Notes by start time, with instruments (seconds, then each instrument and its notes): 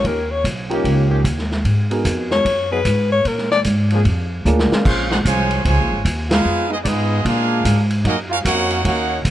0.04 upright bass D#2, trombone section D#3 A#3 C#4 G4, alto saxophone A#4, kick, ride
0.31 alto saxophone C#5
0.44 upright bass B1, kick, hi-hat pedal, ride
0.70 trombone section D#3 A#3 C#4 G4, upright piano C#4 D#4 F4 G4 A#4, ride
0.84 upright bass C#2, kick, ride
1.09 trombone section D#3 A#3 C#4 G4
1.24 upright bass D#2, kick, hi-hat pedal, ride
1.39 snare
1.52 snare
1.65 upright bass G#2, kick, ride
1.90 upright piano B3 D#4 F#4 G#4 A#4, ride
2.05 upright bass F2, kick, hi-hat pedal, ride
2.31 alto saxophone C#5, snare
2.45 upright bass F#2, kick, ride
2.70 trombone section F#3 B3 D#4 G#4, alto saxophone B4
2.85 upright bass G#2, kick, hi-hat pedal, ride
3.12 alto saxophone C#5
3.25 upright bass A#2, alto saxophone A#4, kick, ride
3.38 snare
3.51 alto saxophone D5, snare
3.64 upright bass G#2, kick, hi-hat pedal, ride
3.90 trombone section F3 A#3 D4 G#4, ride
4.05 upright bass F2, kick, ride
4.45 upright bass D2, upright piano A#3 D4 F4 G#4 A#4, hi-hat pedal
4.59 snare
4.70 trombone section C#3 A#3 C4 F4, muted upright bass stroke, snare
4.85 upright bass A#1, trombone section G#3 C#4 F4, trumpet section C#4 G#4 C5 F5, kick, crash
5.10 trumpet section D#4 G#4 C5 F#5, trombone section F#4, snare
5.25 upright bass C2, trombone section F3 G#3 C#4, trumpet section F4 C5 C#5 G#5, kick, hi-hat pedal, ride
5.51 ride
5.64 upright bass C#2, trombone section C#3 F3 G#3, trumpet section F4 C5 C#5 G#5, kick, ride
5.79 upright bass A#1
5.92 upright bass G#1
6.05 upright bass D#2, kick, hi-hat pedal, ride
6.29 trombone section G#3 B3 F4, trumpet section D#4 G#4 B4 F5, snare, ride
6.45 upright bass F2
6.70 trombone section G#3 B3 D#4, trumpet section B3 F4 G#4 D#5
6.83 upright bass G#2, trombone section G#3 B3 D#4, trumpet section D5, kick, hi-hat pedal, ride
6.87 trumpet section B3 F4 G#4 D#5
7.23 upright bass A#2, trombone section G#3 D4 F4, kick, ride
7.27 trumpet section D4 G#4 A#4 F5
7.65 upright bass G#2, kick, hi-hat pedal, ride
7.90 ride
8.05 upright bass F#2, trombone section F#3 A#3 D#4, trumpet section C#4 F#4 A#4 D#5, kick, ride
8.29 trumpet section C#4 F#4 A#4 F5, trombone section F4
8.43 upright bass F2, trombone section A#3 C#4 F#4, trumpet section D#4 A#4 C#5 F#5, kick, hi-hat pedal, ride
8.70 ride
8.84 upright bass D#2, trombone section A#3 C#4 F#4, trumpet section D#4 A#4 C#5 F#5, kick, ride
9.25 upright bass C#2, kick, hi-hat pedal, ride